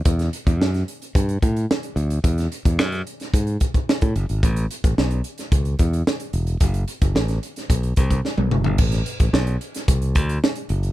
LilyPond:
<<
  \new Staff \with { instrumentName = "Fingered electric bass" } { \clef bass \time 4/4 \key e \minor \tempo 4 = 110 e,8 r16 e,16 fis,8 r8 g,8 a,8 r8 d,8 | e,8 r16 e,16 fis,8 r8 gis,8 r8. a,16 fis,,16 gis,,16 | a,,8 r16 a,,16 b,,8 r8 cis,8 e,8 r8 e,,8 | fis,,8 r16 fis,,16 a,,8 r8 b,,8 c,8 r16 b,,16 fis,,16 g,,16 |
a,,8 r16 a,,16 b,,8 r8 c,8 d,8 r8 fis,,8 | }
  \new DrumStaff \with { instrumentName = "Drums" } \drummode { \time 4/4 <hh bd>16 <hh sn>16 hh16 <hh bd>16 sn16 <hh sn>16 hh16 hh16 <hh bd>16 hh16 <hh bd>16 hh16 sn16 hh16 hh16 hh16 | <hh bd>16 <hh sn>16 hh16 <hh bd>16 sn16 <hh sn>16 hh16 <hh sn>16 <hh bd>16 hh16 <hh bd>16 <hh bd>16 sn16 <hh bd>16 hh16 hh16 | <hh bd>16 hh16 hh16 <hh bd>16 sn16 hh16 hh16 <hh sn>16 <hh bd>16 hh16 <hh bd>16 hh16 sn16 hh16 hh16 hh16 | <hh bd>16 hh16 hh16 <hh bd>16 sn16 <hh sn>16 hh16 <hh sn>16 <hh bd>16 hh16 <hh bd>16 <hh bd>16 sn16 tommh16 toml16 tomfh16 |
<cymc bd>16 <hh sn>16 hh16 <hh bd>16 sn16 hh16 hh16 <hh sn>16 <hh bd>16 hh16 <hh bd>16 hh16 sn16 hh16 hh16 hh16 | }
>>